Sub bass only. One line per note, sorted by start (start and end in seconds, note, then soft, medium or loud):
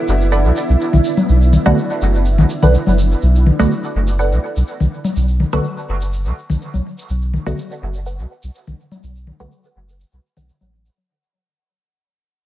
0.08 0.46 F#1 medium
0.45 0.52 B1 loud
0.69 0.76 B1 medium
0.93 1.00 B1 medium
1.29 1.58 B1 loud
1.66 1.73 B1 loud
2.01 2.40 F#1 medium
2.38 2.45 B1 loud
2.63 2.77 B1 medium
2.87 3.15 F#1 medium
3.22 3.51 B1 loud
3.59 3.66 B1 loud
3.95 4.33 F#1 medium
4.32 4.39 B1 loud
4.56 4.63 B1 medium
4.80 4.87 B1 medium
5.16 5.45 B1 medium
5.53 5.60 B1 loud
5.88 6.27 F#1 medium
6.26 6.32 B1 loud
6.50 6.57 B1 medium
6.74 6.81 B1 medium
7.09 7.38 B1 loud
7.46 7.53 B1 loud
7.82 8.21 F#1 medium
8.19 8.26 B1 loud
8.43 8.50 B1 loud
8.68 8.74 B1 medium
9.03 9.32 B1 loud
9.40 9.47 B1 medium
9.76 10.04 F#1 medium
10.13 10.19 B1 loud
10.37 10.51 B1 medium
10.61 10.89 A1 medium